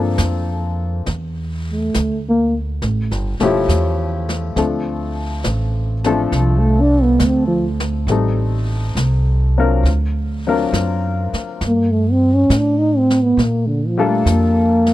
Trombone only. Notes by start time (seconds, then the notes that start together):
1.71 A3
2.29 A#3
6.39 F3
6.59 A3
6.81 D4
7.03 B3
7.26 C4
7.47 F3
11.67 A#3
11.91 A3
12.12 C4
12.35 C#4
12.57 D4
12.78 D#4
12.97 C4
13.22 B3
13.43 A#3
13.67 D3
13.87 F3
14.08 A3
14.30 A#3